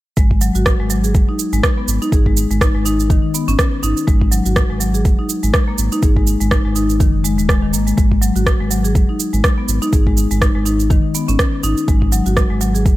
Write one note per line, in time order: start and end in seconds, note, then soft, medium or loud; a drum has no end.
0.17 0.51 G#1 loud
0.17 0.30 G#3 medium
0.17 kick loud
0.17 cabasa soft
0.31 kick medium
0.41 0.49 F#3 medium
0.41 cabasa medium
0.55 0.74 G#1 medium
0.55 0.65 F#4 medium
0.55 cabasa soft
0.66 kick loud
0.66 cross-stick loud
0.66 cabasa soft
0.80 1.16 G#1 medium
0.80 0.90 G#3 medium
0.90 1.03 F#3 medium
0.90 cabasa medium
1.04 1.14 G#4 medium
1.04 cabasa soft
1.15 1.26 F#1 medium
1.15 kick loud
1.15 cabasa soft
1.29 1.39 D#4 medium
1.39 cabasa medium
1.53 1.61 G#1 loud
1.53 1.63 G#3 medium
1.53 cabasa soft
1.63 kick loud
1.63 cross-stick loud
1.63 cabasa soft
1.78 1.83 B3 medium
1.88 1.99 G#1 loud
1.88 cabasa medium
2.02 2.11 D#4 loud
2.02 cabasa soft
2.12 2.46 G#1 loud
2.12 2.20 G#4 medium
2.12 kick loud
2.12 cabasa soft
2.26 2.36 G#3 medium
2.26 kick medium
2.37 cabasa medium
2.51 2.69 G#1 medium
2.51 2.60 G#3 medium
2.51 cabasa medium
2.61 2.74 D#4 medium
2.61 kick loud
2.61 cross-stick loud
2.61 cabasa soft
2.75 3.12 G#1 medium
2.75 2.85 G#3 medium
2.85 2.98 D#4 loud
2.85 cabasa medium
3.00 cabasa medium
3.10 3.21 F#1 medium
3.10 3.22 D#3 loud
3.10 kick loud
3.10 cabasa soft
3.34 3.47 B3 medium
3.34 cabasa medium
3.48 3.56 G#1 loud
3.48 3.58 C#4 loud
3.48 cabasa medium
3.59 kick loud
3.59 cross-stick loud
3.59 cabasa soft
3.83 3.94 G#1 loud
3.83 3.95 D#4 loud
3.83 cabasa loud
3.97 cabasa medium
4.07 4.41 G#1 loud
4.07 4.20 G#3 medium
4.07 kick loud
4.07 cabasa soft
4.21 kick medium
4.32 4.39 F#3 medium
4.32 cabasa medium
4.46 4.65 G#1 medium
4.46 4.55 F#4 medium
4.46 cabasa soft
4.56 kick loud
4.56 cross-stick loud
4.56 cabasa soft
4.70 5.07 G#1 medium
4.70 4.80 G#3 medium
4.80 4.93 F#3 medium
4.80 cabasa medium
4.94 5.04 G#4 medium
4.94 cabasa medium
5.05 5.16 F#1 medium
5.05 kick loud
5.05 cabasa soft
5.19 5.29 D#4 medium
5.29 cabasa medium
5.43 5.52 G#1 loud
5.43 5.53 G#3 medium
5.43 cabasa soft
5.54 kick loud
5.54 cross-stick loud
5.54 cabasa soft
5.68 5.73 A#3 medium
5.78 5.89 G#1 loud
5.78 cabasa medium
5.92 6.02 D#4 loud
5.92 cabasa medium
6.02 6.36 G#1 loud
6.02 6.10 G#4 medium
6.02 kick loud
6.02 cabasa soft
6.16 6.26 G#3 medium
6.16 kick medium
6.27 cabasa medium
6.40 6.60 G#1 medium
6.40 6.50 G#3 medium
6.40 cabasa medium
6.51 6.64 D#4 medium
6.51 kick loud
6.51 cross-stick loud
6.51 cabasa soft
6.65 7.02 G#1 medium
6.65 6.75 G#3 medium
6.76 6.88 D#4 medium
6.76 cabasa medium
6.90 cabasa medium
7.00 7.40 F#1 medium
7.00 7.13 D#3 loud
7.00 kick loud
7.00 cabasa soft
7.24 7.37 G#3 loud
7.24 cabasa medium
7.38 7.75 D#1 loud
7.38 7.47 G#3 medium
7.38 cabasa medium
7.49 7.61 G#3 medium
7.49 kick loud
7.49 cross-stick medium
7.49 cabasa soft
7.63 7.68 D#3 medium
7.73 7.93 G#1 medium
7.73 7.86 A#3 medium
7.73 cabasa medium
7.87 7.96 G#3 medium
7.87 cabasa medium
7.97 8.31 G#1 medium
7.97 8.10 G#3 medium
7.97 kick loud
7.97 cabasa soft
8.12 kick medium
8.22 8.29 F#3 medium
8.22 cabasa medium
8.36 8.55 G#1 medium
8.36 8.45 F#4 medium
8.36 cabasa medium
8.46 kick loud
8.46 cross-stick loud
8.46 cabasa soft
8.60 8.97 G#1 medium
8.60 8.70 G#3 medium
8.71 8.83 F#3 medium
8.71 cabasa medium
8.84 8.94 G#4 medium
8.84 cabasa medium
8.95 9.06 F#1 medium
8.95 kick loud
8.95 cabasa soft
9.09 9.19 D#4 medium
9.20 cabasa medium
9.33 9.42 G#1 loud
9.33 9.43 G#3 medium
9.33 cabasa medium
9.44 kick loud
9.44 cross-stick loud
9.44 cabasa soft
9.58 9.63 B3 medium
9.68 9.79 G#1 loud
9.68 cabasa medium
9.82 9.92 D#4 loud
9.82 cabasa soft
9.93 10.27 G#1 medium
9.93 10.00 G#4 medium
9.93 kick loud
9.93 cabasa soft
10.07 10.16 G#3 medium
10.07 kick medium
10.17 cabasa medium
10.31 10.50 G#1 medium
10.31 10.40 G#3 medium
10.31 cabasa soft
10.41 10.54 D#4 medium
10.41 kick loud
10.41 cross-stick medium
10.41 cabasa soft
10.55 10.92 G#1 medium
10.55 10.65 G#3 medium
10.65 10.78 D#4 loud
10.65 cabasa medium
10.80 cabasa soft
10.90 11.01 F#1 medium
10.90 11.03 D#3 loud
10.90 kick loud
10.90 cabasa soft
11.15 11.28 B3 medium
11.15 cabasa medium
11.28 11.37 G#1 loud
11.28 11.38 C#4 loud
11.28 cabasa soft
11.39 kick loud
11.39 cross-stick loud
11.39 cabasa soft
11.63 11.75 G#1 loud
11.63 11.76 D#4 medium
11.63 cabasa medium
11.77 cabasa soft
11.88 12.22 G#1 loud
11.88 12.00 G#3 medium
11.88 kick loud
11.88 cabasa soft
12.02 kick medium
12.12 12.20 F#3 medium
12.12 cabasa medium
12.26 12.45 G#1 medium
12.26 12.36 F#4 medium
12.26 cabasa soft
12.37 kick loud
12.37 cross-stick medium
12.37 cabasa soft
12.50 12.87 G#1 medium
12.50 12.60 G#3 medium
12.61 12.73 F#3 medium
12.61 cabasa medium
12.75 12.84 G#4 medium
12.75 cabasa soft
12.86 12.97 F#1 loud
12.86 kick loud
12.86 cabasa soft